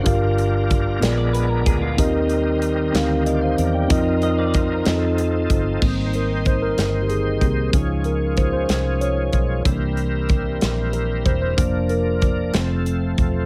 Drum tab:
CC |------|------|------|x-----|
HH |xxxxxx|xxxxxx|xxxxxx|-xxxxx|
SD |---o--|---o--|---o--|---o--|
BD |o-o--o|o-----|o-o--o|o-o--o|

CC |------|------|------|
HH |xxxxxx|xxxxxx|xxxxxx|
SD |---o--|---o--|---o--|
BD |o-o--o|o-o--o|o-o--o|